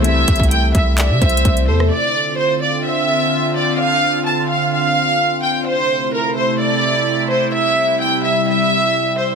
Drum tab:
HH |x-----x-x-x-x-----x-----x-----x-x-x-x--x--------|------------------------------------------------|------------------------------------------------|------------------------------------------------|
CP |------------------------x-----------------------|------------------------------------------------|------------------------------------------------|------------------------------------------------|
SD |---------------------------------------------r--|------------------------------------------------|------------------------------------------------|------------------------------------------------|
BD |------o--o--------o-----------o-----o-----------|------------------------------------------------|------------------------------------------------|------------------------------------------------|

HH |------------------------------------------------|
CP |------------------------------------------------|
SD |------------------------------------------------|
BD |------------------------------------------------|